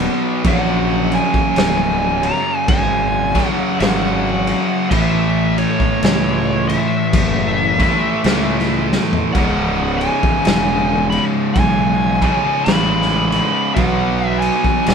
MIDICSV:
0, 0, Header, 1, 5, 480
1, 0, Start_track
1, 0, Key_signature, 4, "minor"
1, 0, Tempo, 1113173
1, 195, Time_signature, 4, 2, 24, 8
1, 3074, Tempo, 1104972
1, 6469, End_track
2, 0, Start_track
2, 0, Title_t, "Lead electric guitar"
2, 0, Program_c, 0, 29
2, 205, Note_on_c, 0, 78, 122
2, 494, Note_off_c, 0, 78, 0
2, 496, Note_on_c, 0, 80, 90
2, 971, Note_on_c, 0, 82, 99
2, 985, Note_off_c, 0, 80, 0
2, 1148, Note_off_c, 0, 82, 0
2, 1158, Note_on_c, 0, 80, 107
2, 1499, Note_off_c, 0, 80, 0
2, 1499, Note_on_c, 0, 78, 107
2, 1637, Note_off_c, 0, 78, 0
2, 1639, Note_on_c, 0, 78, 105
2, 2101, Note_off_c, 0, 78, 0
2, 2115, Note_on_c, 0, 76, 102
2, 2406, Note_off_c, 0, 76, 0
2, 2408, Note_on_c, 0, 73, 82
2, 2881, Note_off_c, 0, 73, 0
2, 2883, Note_on_c, 0, 76, 73
2, 3828, Note_off_c, 0, 76, 0
2, 4031, Note_on_c, 0, 78, 111
2, 4312, Note_off_c, 0, 78, 0
2, 4314, Note_on_c, 0, 80, 91
2, 4783, Note_off_c, 0, 80, 0
2, 4799, Note_on_c, 0, 83, 106
2, 4852, Note_off_c, 0, 83, 0
2, 4990, Note_on_c, 0, 80, 102
2, 5469, Note_on_c, 0, 83, 113
2, 5489, Note_off_c, 0, 80, 0
2, 5935, Note_off_c, 0, 83, 0
2, 5946, Note_on_c, 0, 78, 115
2, 6228, Note_off_c, 0, 78, 0
2, 6230, Note_on_c, 0, 80, 97
2, 6469, Note_off_c, 0, 80, 0
2, 6469, End_track
3, 0, Start_track
3, 0, Title_t, "Distorted electric guitar"
3, 0, Program_c, 1, 30
3, 0, Note_on_c, 1, 47, 73
3, 0, Note_on_c, 1, 54, 79
3, 0, Note_on_c, 1, 59, 89
3, 183, Note_off_c, 1, 47, 0
3, 187, Note_off_c, 1, 54, 0
3, 189, Note_off_c, 1, 59, 0
3, 197, Note_on_c, 1, 42, 107
3, 204, Note_on_c, 1, 49, 97
3, 210, Note_on_c, 1, 54, 112
3, 1430, Note_off_c, 1, 42, 0
3, 1433, Note_off_c, 1, 49, 0
3, 1436, Note_off_c, 1, 54, 0
3, 1443, Note_on_c, 1, 54, 92
3, 1452, Note_on_c, 1, 49, 81
3, 1457, Note_on_c, 1, 42, 80
3, 1626, Note_off_c, 1, 54, 0
3, 1627, Note_off_c, 1, 42, 0
3, 1630, Note_off_c, 1, 49, 0
3, 1632, Note_on_c, 1, 42, 86
3, 1641, Note_on_c, 1, 49, 86
3, 1646, Note_on_c, 1, 54, 89
3, 2104, Note_off_c, 1, 42, 0
3, 2108, Note_off_c, 1, 49, 0
3, 2111, Note_off_c, 1, 54, 0
3, 2119, Note_on_c, 1, 45, 94
3, 2125, Note_on_c, 1, 52, 109
3, 2131, Note_on_c, 1, 57, 107
3, 3348, Note_off_c, 1, 45, 0
3, 3351, Note_off_c, 1, 52, 0
3, 3354, Note_off_c, 1, 57, 0
3, 3365, Note_on_c, 1, 57, 92
3, 3371, Note_on_c, 1, 52, 96
3, 3376, Note_on_c, 1, 45, 73
3, 3546, Note_off_c, 1, 57, 0
3, 3549, Note_off_c, 1, 52, 0
3, 3552, Note_off_c, 1, 45, 0
3, 3557, Note_on_c, 1, 45, 86
3, 3563, Note_on_c, 1, 52, 78
3, 3569, Note_on_c, 1, 57, 85
3, 4027, Note_off_c, 1, 45, 0
3, 4030, Note_off_c, 1, 52, 0
3, 4033, Note_off_c, 1, 57, 0
3, 4034, Note_on_c, 1, 37, 103
3, 4041, Note_on_c, 1, 44, 97
3, 4047, Note_on_c, 1, 49, 114
3, 5267, Note_off_c, 1, 37, 0
3, 5270, Note_off_c, 1, 44, 0
3, 5273, Note_off_c, 1, 49, 0
3, 5284, Note_on_c, 1, 49, 96
3, 5290, Note_on_c, 1, 44, 89
3, 5296, Note_on_c, 1, 37, 76
3, 5466, Note_off_c, 1, 49, 0
3, 5468, Note_off_c, 1, 37, 0
3, 5469, Note_off_c, 1, 44, 0
3, 5473, Note_on_c, 1, 37, 78
3, 5480, Note_on_c, 1, 44, 81
3, 5487, Note_on_c, 1, 49, 90
3, 5943, Note_off_c, 1, 37, 0
3, 5947, Note_off_c, 1, 44, 0
3, 5950, Note_off_c, 1, 49, 0
3, 5954, Note_on_c, 1, 47, 108
3, 5960, Note_on_c, 1, 54, 94
3, 5965, Note_on_c, 1, 59, 104
3, 6469, Note_off_c, 1, 47, 0
3, 6469, Note_off_c, 1, 54, 0
3, 6469, Note_off_c, 1, 59, 0
3, 6469, End_track
4, 0, Start_track
4, 0, Title_t, "Fingered electric bass"
4, 0, Program_c, 2, 33
4, 193, Note_on_c, 2, 34, 105
4, 509, Note_off_c, 2, 34, 0
4, 677, Note_on_c, 2, 25, 82
4, 992, Note_off_c, 2, 25, 0
4, 1158, Note_on_c, 2, 32, 81
4, 1472, Note_off_c, 2, 32, 0
4, 1640, Note_on_c, 2, 32, 91
4, 1954, Note_off_c, 2, 32, 0
4, 2118, Note_on_c, 2, 33, 92
4, 2432, Note_off_c, 2, 33, 0
4, 2597, Note_on_c, 2, 37, 88
4, 2911, Note_off_c, 2, 37, 0
4, 3077, Note_on_c, 2, 30, 81
4, 3392, Note_off_c, 2, 30, 0
4, 3558, Note_on_c, 2, 37, 81
4, 3873, Note_off_c, 2, 37, 0
4, 4039, Note_on_c, 2, 25, 96
4, 4353, Note_off_c, 2, 25, 0
4, 4519, Note_on_c, 2, 28, 76
4, 4833, Note_off_c, 2, 28, 0
4, 5000, Note_on_c, 2, 35, 85
4, 5313, Note_off_c, 2, 35, 0
4, 5480, Note_on_c, 2, 33, 97
4, 5793, Note_off_c, 2, 33, 0
4, 5958, Note_on_c, 2, 35, 103
4, 6271, Note_off_c, 2, 35, 0
4, 6438, Note_on_c, 2, 27, 95
4, 6469, Note_off_c, 2, 27, 0
4, 6469, End_track
5, 0, Start_track
5, 0, Title_t, "Drums"
5, 0, Note_on_c, 9, 49, 62
5, 43, Note_off_c, 9, 49, 0
5, 191, Note_on_c, 9, 49, 84
5, 193, Note_on_c, 9, 36, 107
5, 234, Note_off_c, 9, 49, 0
5, 236, Note_off_c, 9, 36, 0
5, 481, Note_on_c, 9, 49, 53
5, 524, Note_off_c, 9, 49, 0
5, 578, Note_on_c, 9, 36, 91
5, 621, Note_off_c, 9, 36, 0
5, 673, Note_on_c, 9, 49, 72
5, 683, Note_on_c, 9, 38, 115
5, 716, Note_off_c, 9, 49, 0
5, 726, Note_off_c, 9, 38, 0
5, 962, Note_on_c, 9, 49, 66
5, 1005, Note_off_c, 9, 49, 0
5, 1156, Note_on_c, 9, 49, 81
5, 1157, Note_on_c, 9, 36, 125
5, 1199, Note_off_c, 9, 49, 0
5, 1200, Note_off_c, 9, 36, 0
5, 1445, Note_on_c, 9, 36, 81
5, 1445, Note_on_c, 9, 49, 61
5, 1454, Note_on_c, 9, 38, 34
5, 1488, Note_off_c, 9, 36, 0
5, 1488, Note_off_c, 9, 49, 0
5, 1497, Note_off_c, 9, 38, 0
5, 1639, Note_on_c, 9, 49, 70
5, 1649, Note_on_c, 9, 38, 108
5, 1682, Note_off_c, 9, 49, 0
5, 1692, Note_off_c, 9, 38, 0
5, 1928, Note_on_c, 9, 49, 68
5, 1971, Note_off_c, 9, 49, 0
5, 2118, Note_on_c, 9, 36, 100
5, 2119, Note_on_c, 9, 49, 86
5, 2161, Note_off_c, 9, 36, 0
5, 2162, Note_off_c, 9, 49, 0
5, 2405, Note_on_c, 9, 49, 65
5, 2448, Note_off_c, 9, 49, 0
5, 2501, Note_on_c, 9, 36, 92
5, 2544, Note_off_c, 9, 36, 0
5, 2598, Note_on_c, 9, 49, 82
5, 2607, Note_on_c, 9, 38, 107
5, 2641, Note_off_c, 9, 49, 0
5, 2651, Note_off_c, 9, 38, 0
5, 2887, Note_on_c, 9, 49, 78
5, 2930, Note_off_c, 9, 49, 0
5, 3075, Note_on_c, 9, 49, 92
5, 3076, Note_on_c, 9, 36, 118
5, 3119, Note_off_c, 9, 36, 0
5, 3119, Note_off_c, 9, 49, 0
5, 3364, Note_on_c, 9, 36, 87
5, 3364, Note_on_c, 9, 49, 59
5, 3373, Note_on_c, 9, 38, 33
5, 3407, Note_off_c, 9, 36, 0
5, 3407, Note_off_c, 9, 49, 0
5, 3417, Note_off_c, 9, 38, 0
5, 3557, Note_on_c, 9, 49, 77
5, 3567, Note_on_c, 9, 38, 95
5, 3601, Note_off_c, 9, 49, 0
5, 3610, Note_off_c, 9, 38, 0
5, 3710, Note_on_c, 9, 38, 37
5, 3754, Note_off_c, 9, 38, 0
5, 3854, Note_on_c, 9, 38, 68
5, 3897, Note_off_c, 9, 38, 0
5, 3943, Note_on_c, 9, 43, 87
5, 3986, Note_off_c, 9, 43, 0
5, 4038, Note_on_c, 9, 36, 106
5, 4038, Note_on_c, 9, 49, 80
5, 4082, Note_off_c, 9, 36, 0
5, 4082, Note_off_c, 9, 49, 0
5, 4325, Note_on_c, 9, 49, 54
5, 4369, Note_off_c, 9, 49, 0
5, 4422, Note_on_c, 9, 36, 97
5, 4465, Note_off_c, 9, 36, 0
5, 4516, Note_on_c, 9, 49, 81
5, 4526, Note_on_c, 9, 38, 109
5, 4560, Note_off_c, 9, 49, 0
5, 4569, Note_off_c, 9, 38, 0
5, 4808, Note_on_c, 9, 49, 62
5, 4852, Note_off_c, 9, 49, 0
5, 4997, Note_on_c, 9, 49, 74
5, 4998, Note_on_c, 9, 36, 110
5, 5040, Note_off_c, 9, 49, 0
5, 5041, Note_off_c, 9, 36, 0
5, 5285, Note_on_c, 9, 36, 81
5, 5286, Note_on_c, 9, 49, 62
5, 5329, Note_off_c, 9, 36, 0
5, 5329, Note_off_c, 9, 49, 0
5, 5477, Note_on_c, 9, 49, 71
5, 5486, Note_on_c, 9, 38, 98
5, 5520, Note_off_c, 9, 49, 0
5, 5530, Note_off_c, 9, 38, 0
5, 5632, Note_on_c, 9, 38, 33
5, 5676, Note_off_c, 9, 38, 0
5, 5764, Note_on_c, 9, 49, 61
5, 5808, Note_off_c, 9, 49, 0
5, 5956, Note_on_c, 9, 49, 73
5, 5957, Note_on_c, 9, 36, 105
5, 6000, Note_off_c, 9, 36, 0
5, 6000, Note_off_c, 9, 49, 0
5, 6241, Note_on_c, 9, 49, 61
5, 6285, Note_off_c, 9, 49, 0
5, 6339, Note_on_c, 9, 36, 90
5, 6382, Note_off_c, 9, 36, 0
5, 6434, Note_on_c, 9, 49, 84
5, 6444, Note_on_c, 9, 38, 97
5, 6469, Note_off_c, 9, 38, 0
5, 6469, Note_off_c, 9, 49, 0
5, 6469, End_track
0, 0, End_of_file